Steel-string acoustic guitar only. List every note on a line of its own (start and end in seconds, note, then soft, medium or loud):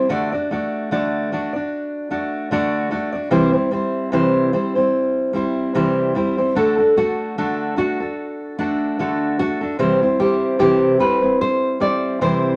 0.09 0.32 D3 medium
0.09 0.32 A3 medium
0.09 0.32 D4 medium
0.09 0.32 F#4 medium
0.09 0.31 D5 medium
0.32 0.51 D4 soft
0.32 0.51 F#4 soft
0.32 0.50 D5 medium
0.51 0.91 A3 medium
0.51 0.91 D4 medium
0.51 0.91 F#4 medium
0.51 0.91 D5 medium
0.91 1.31 D3 medium
0.91 1.31 A3 medium
0.91 1.32 D4 medium
0.91 1.32 F#4 medium
0.91 1.32 D5 medium
1.32 1.54 A3 medium
1.32 1.54 D4 medium
1.32 1.54 F#4 medium
1.32 1.52 D5 medium
1.53 2.10 D4 soft
1.53 2.10 F#4 soft
1.53 2.12 D5 soft
2.10 2.51 A3 medium
2.10 2.51 D4 medium
2.10 2.51 F#4 medium
2.10 2.52 D5 medium
2.51 2.92 D3 medium
2.51 2.90 A3 medium
2.51 2.91 D4 medium
2.51 2.91 F#4 medium
2.51 2.92 D5 medium
2.91 3.14 A3 medium
2.91 3.14 D4 medium
2.91 3.13 F#4 medium
2.91 3.11 D5 medium
3.12 3.31 D4 soft
3.12 3.31 F#4 soft
3.12 3.32 D5 medium
3.31 3.54 C3 medium
3.31 3.54 E3 medium
3.31 3.54 G3 medium
3.31 3.54 C4 medium
3.31 3.52 E4 medium
3.31 3.51 C5 medium
3.53 3.70 G3 soft
3.53 3.71 C4 soft
3.53 3.72 E4 soft
3.53 3.72 C5 soft
3.71 4.12 G3 medium
3.71 4.12 C4 medium
3.71 4.12 E4 medium
3.71 4.13 C5 medium
4.12 4.53 C3 medium
4.12 4.53 E3 medium
4.12 4.52 G3 medium
4.12 4.52 C4 medium
4.12 4.53 E4 medium
4.12 4.53 C5 medium
4.53 4.75 G3 medium
4.53 4.76 C4 medium
4.53 4.75 E4 medium
4.53 4.74 C5 medium
4.75 5.32 G3 soft
4.75 5.33 C4 soft
4.75 5.34 E4 soft
4.75 5.34 C5 soft
5.33 5.74 G3 medium
5.33 5.74 C4 medium
5.33 5.75 E4 medium
5.33 5.75 C5 medium
5.75 6.15 C3 medium
5.75 6.15 E3 medium
5.75 6.14 G3 medium
5.75 6.15 C4 medium
5.75 6.15 E4 medium
5.75 6.16 C5 medium
6.15 6.37 G3 medium
6.15 6.38 C4 medium
6.15 6.37 E4 medium
6.15 6.36 C5 medium
6.37 6.56 G3 soft
6.37 6.56 C4 soft
6.37 6.56 E4 soft
6.37 6.55 C5 soft
6.55 6.78 D3 medium
6.55 6.78 A3 medium
6.55 6.78 D4 medium
6.55 6.78 F#4 medium
6.55 6.77 A4 medium
6.78 6.96 D4 soft
6.78 6.96 F#4 soft
6.78 6.96 A4 soft
6.96 7.36 A3 soft
6.96 7.37 D4 medium
6.96 7.37 F#4 medium
6.96 7.37 A4 medium
7.38 7.77 D3 medium
7.38 7.75 A3 medium
7.38 7.76 D4 medium
7.38 7.77 F#4 medium
7.38 7.78 A4 medium
7.76 7.99 A3 medium
7.76 7.99 D4 medium
7.76 8.00 F#4 medium
7.76 7.99 A4 medium
8.00 8.58 D4 soft
8.00 8.59 F#4 soft
8.00 8.58 A4 soft
8.58 8.98 A3 soft
8.58 8.98 D4 medium
8.58 8.99 F#4 medium
8.58 8.99 A4 medium
8.99 9.39 D3 medium
8.99 9.38 A3 medium
8.99 9.39 D4 medium
8.99 9.39 F#4 medium
8.99 9.40 A4 medium
9.39 9.61 A3 medium
9.39 9.61 D4 medium
9.39 9.61 F#4 medium
9.39 9.60 A4 medium
9.61 9.79 D4 soft
9.61 9.79 F#4 soft
9.61 9.79 A4 soft
9.79 10.01 C3 medium
9.79 10.01 E3 medium
9.79 10.01 G3 medium
9.79 10.01 C4 medium
9.79 10.01 E4 medium
9.79 10.00 C5 medium
10.02 10.18 G3 soft
10.02 10.20 C4 soft
10.02 10.20 E4 soft
10.02 10.19 C5 soft
10.19 10.59 G3 medium
10.19 10.59 C4 medium
10.19 10.59 E4 medium
10.19 10.60 C5 soft
10.59 11.00 C3 medium
10.59 11.00 E3 medium
10.59 10.98 G3 medium
10.59 10.99 C4 medium
10.59 11.00 E4 medium
10.59 11.00 C5 medium
10.99 11.22 G3 medium
10.99 11.22 C4 medium
10.99 11.21 E4 medium
10.99 11.20 C5 medium
11.21 11.79 G3 soft
11.21 11.80 C4 soft
11.21 11.80 E4 soft
11.21 11.80 C5 soft
11.80 12.20 G3 medium
11.80 12.20 C4 medium
11.80 12.21 E4 medium
11.80 12.21 C5 medium
12.21 12.56 C3 medium
12.21 12.56 E3 medium
12.21 12.56 G3 medium
12.21 12.56 C4 medium
12.21 12.56 E4 medium
12.21 12.56 C5 medium